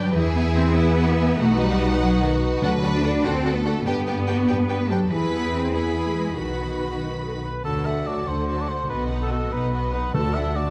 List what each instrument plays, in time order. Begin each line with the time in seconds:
Already playing: double bass section G2, harp G2 D4 B4 D5 G5, cello section F#3, viola section D4 G5, french horn section D4 B4, violin section G4 B4 D5
0.13 harp E2, double bass section E2, cello section E3, french horn section E4 G#4, viola section E4 G#4, violin section G#4 E5
0.35 cello section B3, harp E4
0.56 cello section C4, harp B4
0.76 cello section B3, violin section E4, harp G#5
0.97 violin section F#4, harp E5
1.18 violin section G#4, harp B4
1.38 double bass section B1, harp B2, cello section A3, viola section D#4 F#4, french horn section D#4 F#4, violin section F#4 B4 F#5
1.59 cello section G3, harp D#4
1.79 harp B4
2.00 cello section F#3, violin section F#4, harp F#5
2.21 cello section D#3, harp D#5
2.41 harp B4
2.62 double bass section D2, timpani D3, harp D3, cello section F#3, viola section D4 F#4, french horn section D4, violin section A4 B4 F#5
2.82 harp D4, viola section D4 F#4, violin section A4 F#5
2.94 cello section D4
3.03 viola section D4 F#4, cello section D4, harp A4, violin section A4 F#5
3.24 double bass section D2, cello section C4, viola section D4 F#4, violin section A4 F#5, harp F#5
3.44 viola section D4 F#4, violin section A4 F#5, harp D5
3.56 cello section B3
3.65 cello section A3, viola section D4 F#4, harp A4, violin section A4 F#5
3.85 harp G2, double bass section G2, cello section B3, viola section D4 G4, violin section G4 B4 G5, french horn section G4
4.06 harp B3, viola section D4 G4, violin section G4 B4 G5
4.26 viola section D4 G4, violin section F#4 B4 G5, harp B4
4.48 double bass section G2, viola section D4 G4, violin section G4 B4 G5
4.68 viola section D4 G4, violin section B4 G5, harp B4
4.89 cello section F#3, viola section D4 G4, harp G4, violin section A4 B4 G5
5.10 harp E2, double bass section E2, cello section E3, french horn section E4 G#4, viola section E4 G#4, violin section B4 B5
5.32 cello section B3, harp B3
5.53 cello section C4, harp B4
5.73 cello section B3, viola section E4 G#4, violin section G#4 B4 B5, harp G#5
5.94 harp B4
6.06 cello section A3
6.15 cello section G#3, harp G#4
6.36 double bass section B1, harp B2, cello section D#3, viola section F#4, violin section F#4 B4 B5, french horn section F#4 B4
6.58 harp B3
6.80 harp B4
7.00 french horn section D#4, harp F#5
7.22 french horn section A4, harp B4
7.42 harp F#4, cor anglais B4, french horn section B4
7.64 double bass section D2, harp D3, cello section D3, viola section F#3, violin section F#4 A5, cor anglais A4
7.85 viola section A3, harp A4, violin section A4 F#5, cor anglais E5
8.06 viola section F#3, violin section F#4 A5, harp F#4, cor anglais D5
8.27 double bass section D2, cello section D3, viola section A3, violin section A4 F#5, harp A4, cor anglais C5
8.47 viola section F#3, harp D4, violin section F#4 A5
8.61 cor anglais D5
8.68 viola section A3, violin section A4 F#5, cor anglais C5
8.89 double bass section B1, cello section B2, harp B2, viola section B3, violin section F#4 D#5, cor anglais B4
9.10 viola section D#4, violin section B4 F#5, harp D#5
9.22 cor anglais A4
9.30 viola section B3, violin section F#4 D#5, harp F#4, cor anglais A4
9.51 double bass section B1, cello section B2, viola section D#4, violin section B4 F#5, cor anglais B4, harp D#5
9.72 viola section B3, harp B3, violin section F#4 D#5
9.92 viola section D#4, violin section B4 F#5, cor anglais B4, harp D#5
10.13 double bass section D2, harp D3, cello section D3, timpani D3, viola section A3, violin section F#4 A5, cor anglais A4
10.34 viola section D4, violin section A4 F#5, harp D5, cor anglais E5
10.55 viola section A3, violin section F#4 A5, harp F#4, cor anglais D5